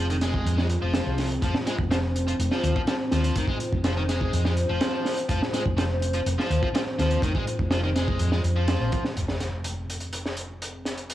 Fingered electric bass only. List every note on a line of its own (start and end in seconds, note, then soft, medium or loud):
0.00 0.40 F1 loud
0.46 0.76 F2 medium
0.82 0.99 F1 medium
1.06 1.37 C2 medium
1.42 1.51 F1 loud
1.79 2.33 F1 loud
2.39 2.48 F1 medium
2.63 2.72 D#2 loud
3.12 3.29 D#2 medium
3.36 3.45 F1 loud
3.73 4.27 F1 loud
4.33 4.63 F2 medium
4.69 4.78 F1 medium
5.29 5.38 F1 loud
5.66 6.21 F1 loud
6.26 6.35 F1 medium
6.50 6.59 D#2 loud
6.99 7.16 D#2 medium
7.22 7.31 F1 loud
7.59 8.14 F1 loud
8.20 8.43 F2 medium
8.44 8.75 F2 loud
8.80 8.89 A#1 medium
9.17 11.14 F1 medium